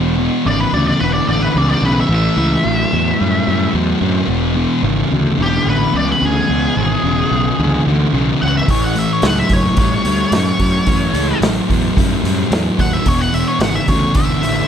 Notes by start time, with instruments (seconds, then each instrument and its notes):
Already playing: picked electric bass E1, distorted electric guitar E2 B2
0.19 distorted electric guitar E2 B2
0.45 picked electric bass G#1, distorted electric guitar E2 C#3, lead electric guitar D5
0.60 lead electric guitar B4
0.73 picked electric bass D2, distorted electric guitar E2 C#3, lead electric guitar D5
0.87 lead electric guitar D5
1.00 picked electric bass E1, distorted electric guitar E2 D3, lead electric guitar B4
1.13 lead electric guitar D5
1.28 picked electric bass A1, distorted electric guitar E2 D3, lead electric guitar D5
1.42 lead electric guitar B4
1.55 picked electric bass C#2, distorted electric guitar E2 C#3, lead electric guitar D5
1.69 lead electric guitar D5
1.82 picked electric bass B1, distorted electric guitar E2 C#3, lead electric guitar B4
2.00 lead electric guitar E5
2.09 picked electric bass A1, distorted electric guitar A2 E3
2.15 lead electric guitar E5
2.37 picked electric bass C#2, distorted electric guitar A2 E3
2.64 picked electric bass A1, distorted electric guitar A2 F#3
2.93 picked electric bass E2, distorted electric guitar A2 F#3
3.20 picked electric bass F#2, distorted electric guitar A2 G3
3.47 picked electric bass F#2, distorted electric guitar A2 G3
3.74 picked electric bass E2, distorted electric guitar A2 F#3
4.01 picked electric bass F#2, distorted electric guitar A2 F#3
4.28 picked electric bass E1, distorted electric guitar E2 B2
4.55 distorted electric guitar E2 B2
4.83 picked electric bass G#1, distorted electric guitar E2 C#3
5.11 picked electric bass D2, distorted electric guitar E2 C#3
5.37 picked electric bass E1, distorted electric guitar E2 D3
5.42 lead electric guitar G4
5.64 picked electric bass A1, distorted electric guitar E2 D3
5.70 lead electric guitar B4
5.93 picked electric bass C#2, distorted electric guitar E2 C#3, lead electric guitar D5
6.12 lead electric guitar B4
6.20 picked electric bass D2, distorted electric guitar E2 C#3
6.25 lead electric guitar G#4
6.48 picked electric bass C#2, distorted electric guitar E2 B2
6.76 picked electric bass G#1, distorted electric guitar E2 B2
7.04 picked electric bass E1, distorted electric guitar E2 C#3
7.31 picked electric bass B1, distorted electric guitar E2 C#3
7.59 picked electric bass C#2, distorted electric guitar E2 D3
7.87 picked electric bass D2, distorted electric guitar E2 D3
8.13 picked electric bass B1, distorted electric guitar E2 C#3
8.42 picked electric bass C#2, distorted electric guitar E2 C#3, lead electric guitar F#5
8.57 lead electric guitar E5
8.68 picked electric bass A1, distorted electric guitar A2 E3, lead electric guitar C#5, kick, open hi-hat
8.84 lead electric guitar F#5
8.96 distorted electric guitar A2 E3, lead electric guitar E5, open hi-hat
9.13 lead electric guitar C#5
9.22 picked electric bass C#2, distorted electric guitar A2 F#3, snare, open hi-hat
9.26 lead electric guitar F#5
9.39 lead electric guitar E5
9.49 picked electric bass F#1, distorted electric guitar A2 F#3, kick, open hi-hat
9.53 lead electric guitar C#5
9.77 picked electric bass A1, distorted electric guitar A2 G3, lead electric guitar C#5, kick, open hi-hat
10.05 picked electric bass D2, distorted electric guitar A2 G3, open hi-hat
10.32 picked electric bass F#2, distorted electric guitar A2 F#3, snare, open hi-hat
10.59 picked electric bass F#2, distorted electric guitar A2 F#3, kick, open hi-hat
10.86 picked electric bass F#2, distorted electric guitar A2 E3, kick, open hi-hat
11.14 picked electric bass C#2, distorted electric guitar A2 E3, open hi-hat
11.41 picked electric bass A1, distorted electric guitar A2 F#3, snare, open hi-hat
11.69 picked electric bass E2, distorted electric guitar A2 F#3, kick, open hi-hat
11.97 picked electric bass F#2, distorted electric guitar A2 G3, kick, open hi-hat
12.24 picked electric bass F#2, distorted electric guitar A2 G3, open hi-hat
12.51 picked electric bass E2, distorted electric guitar A2 F#3, snare, open hi-hat
12.78 picked electric bass D#2, distorted electric guitar A2 F#3, lead electric guitar F#5, kick, open hi-hat
12.93 lead electric guitar E5
13.06 picked electric bass E1, distorted electric guitar E2 B2, lead electric guitar C#5, kick, open hi-hat
13.21 lead electric guitar F#5
13.33 distorted electric guitar E2 B2, lead electric guitar E5, open hi-hat
13.48 lead electric guitar C#5
13.60 picked electric bass G#1, distorted electric guitar E2 C#3, lead electric guitar F#5, snare, open hi-hat
13.75 lead electric guitar E5
13.88 picked electric bass D2, distorted electric guitar E2 C#3, lead electric guitar C#5, kick, open hi-hat
14.14 picked electric bass E1, distorted electric guitar E2 D3, lead electric guitar E5, kick, open hi-hat
14.42 picked electric bass A1, distorted electric guitar E2 D3, open hi-hat